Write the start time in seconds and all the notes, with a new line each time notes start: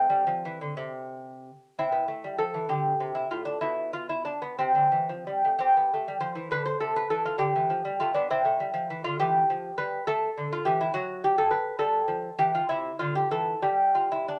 Already playing: C4
0.10 G3
0.27 F3
0.45 E3
0.61 D3
0.77 C3
1.79 C4 E4
1.92 B3
2.08 A3
2.24 G3
2.38 F3 A4
2.54 E3
2.69 D3 G4
3.00 C3
3.15 E4
3.31 A2 F4
3.45 D4
3.61 B2 E4
3.93 F4
4.09 E4
4.25 D4
4.42 B3
4.59 C3 C4
4.75 D3
4.92 E3
5.09 F3
5.27 G3
5.45 A3
5.59 C4 G4
5.77 B3
5.94 A3
6.08 G3
6.20 F3 C5
6.35 E3
6.51 D3 B4
6.65 C5
6.80 C3 A4
6.96 B4
7.10 E3 A4
7.25 F4
7.38 D3 G4
7.56 E3
7.70 F3
7.85 G3
8.00 A3 F4
8.14 B3 D4
8.30 C4 E4
8.45 A3
8.60 G3
8.74 F3
8.90 E3
9.04 D3 F4
9.20 E3 G4
9.50 F3
9.78 G3 B4
10.07 A3 A4
10.38 D3
10.53 F4
10.65 E3 G4
10.81 E4
10.94 F#3 F#4
11.24 G4
11.38 A4
11.51 B4
11.79 G3 A4
12.08 F3
12.39 E3 G4
12.55 F4
12.69 C3 E4
12.99 D3 F4
13.15 G4
13.31 E3 A4
13.62 G3 G4
13.95 F4
14.12 E4
14.28 D4